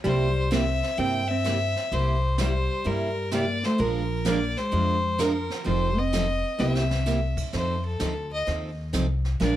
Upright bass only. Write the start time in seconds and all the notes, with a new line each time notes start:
0.05 C2
0.98 G2
1.92 C2
2.86 G2
3.79 A#1
4.73 F2
5.67 F1
6.60 C2
7.54 F2
8.01 D2
8.47 D#2
8.94 C2
9.41 A#1